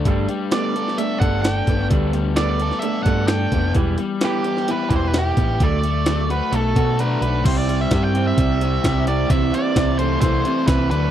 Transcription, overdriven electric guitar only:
X:1
M:4/4
L:1/8
Q:1/4=130
K:G
V:1 name="Overdriven electric guitar"
G, G, B, A D A D B, | G, G, B, A D A D B, | G, G, B, G E G E B, | A, A, A, F A, F D A, |
[G,CEG] [CEG] [G,CEG] [CEG] [G,CEG] [CEG] [G,CEG] [CEG] | [E,CE] [CE] [E,CE] [CE] [E,CE] [CE] [E,CE] [F,A,D] |]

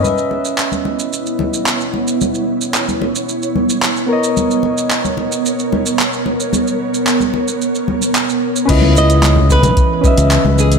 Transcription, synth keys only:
X:1
M:4/4
L:1/8
Q:1/4=111
K:C#dor
V:1 name="Synth keys"
[CBde]8- | [CBde]6- [CBde] [B,Acd]- | [B,Acd]8- | [B,Acd]6- [B,Acd] z |
[CEBd]4- [CEBd] [CBde]3 |]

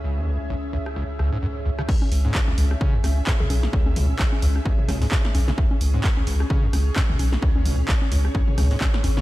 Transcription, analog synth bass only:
X:1
M:4/4
L:1/8
Q:"Swing 16ths" 1/4=130
K:C#m
V:1 name="Analog synth bass" clef=bass
C,,8 | z C,, z C,, z C,, z B,,, | z C,, z C,, z C,, z B,,, | z C,, z C,, z C,, z B,,, |
z C,, z C,, z C,, z G,,, |]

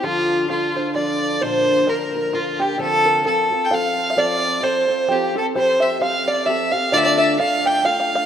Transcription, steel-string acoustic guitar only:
X:1
M:3/4
L:1/8
Q:"Swing" 1/4=131
K:Dm
V:1 name="Steel-string acoustic guitar"
[D,F,DFA]2 [F,DFA] [DFA] [F,DFA]2 | [B,,D,F,B,DB]2 [F,B,DB] [F,B,DB] [F,B,DB] [F,B,DB] | [D,F,CFA]2 [F,CFA] [CFA] [F,CFA]2 | [F,CFA]2 [F,CFA] [CFA] [F,CFA] [CFA] |
[F,CGA]2 [F,CGA]2 [F,CGA] [CGA] | [D,A,DFA]2 [A,DFA]2 [A,DFA]2 |]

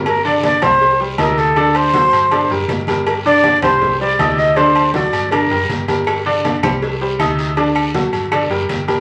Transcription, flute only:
X:1
M:4/4
L:1/8
Q:1/4=160
K:Gm
V:1 name="Flute"
B d d c2 z B A- | A c4 z3 | B d2 c2 d2 e | c2 d2 B3 z |
z8 | z8 |]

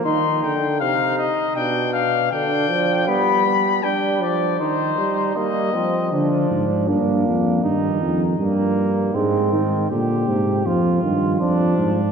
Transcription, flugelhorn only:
X:1
M:4/4
L:1/8
Q:1/4=79
K:Cm
V:1 name="Flugelhorn"
E z E2 D2 D2 | =B, B, D2 E2 _B, C | D2 D2 E2 B,2 | C2 G2 F2 D2 |]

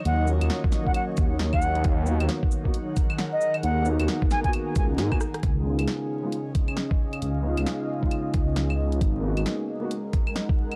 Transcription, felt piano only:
X:1
M:4/4
L:1/16
Q:"Swing 16ths" 1/4=134
K:G#dor
V:1 name="Felt piano"
z2 [A,CEF]4- [A,CEF] [A,CDF]8- [A,CDF] | z2 [A,B,DF]4- [A,B,DF] [A,B,DF] z8 | z2 [A,B,DF]4- [A,B,DF] [A,B,DF]6 [A,B,DF] z2 | z2 [G,B,DE]4- [G,B,DE] [G,B,DE] z8 |
z2 [G,B,DE]4- [G,B,DE] [G,B,DE]8- [G,B,DE] | z2 [A,B,DF]4- [A,B,DF] [A,B,DF] z8 |]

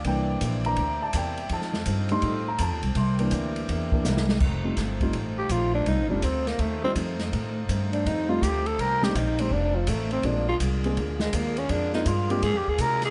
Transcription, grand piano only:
X:1
M:4/4
L:1/8
Q:"Swing" 1/4=165
K:Fmix
V:1 name="Grand piano"
g2 z b2 a g2 | a2 z c'2 b a2 | c'2 z6 | z [G,A,CEF] z [G,A,CEF] z4 |
z [G,A,CEF] z3 [G,A,CEF] z2 | z4 z [G,A,CEF] z2 | z [G,B,CDE] z [G,A,CEG] z4 | [_A,B,CDF] z2 [A,B,CD_A] z4 |
z [_A,B,CDF] z [A,B,CDF] z4 |]
V:2 name="Grand piano"
[=E,B,D]3 [E,B,D] z4 | z3 [G,A,E] z4 | z [=E,B,D]4 [E,B,D] z2 | z8 |
z8 | z8 | z8 | z8 |
z8 |]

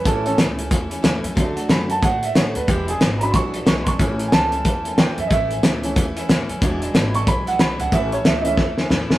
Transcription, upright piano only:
X:1
M:4/4
L:1/8
Q:"Swing" 1/4=183
K:A
V:1 name="Upright piano"
A [CA] z6 | z2 b a f e c B | =G ^G z [_b=b] [=c'^c']2 c' [=c'^c'] | z2 [ga]4 =g e |
[^de]6 z2 | z3 c' b f b f | e c e [^de]2 z3 |]
V:2 name="Upright piano"
[E,A,C]8 | [F,A,D]3 z4 z | z3 [F,G,D]3 z2 | [E,A,C]3 z4 z |
z3 [E,A,C] z4 | [F,G,D]3 z4 z | z3 [E,A,C] z4 |]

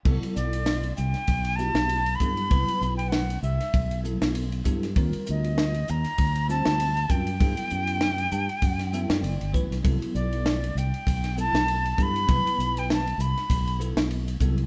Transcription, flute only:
X:1
M:4/4
L:1/16
Q:"Swing 16ths" 1/4=98
K:Clyd
V:1 name="Flute"
z2 d4 g4 a4 b2- | b3 g f2 e4 z6 | z2 _e4 _b4 a4 g2- | g12- g2 z2 |
z2 d4 g4 a4 b2- | b3 g a2 b4 z6 |]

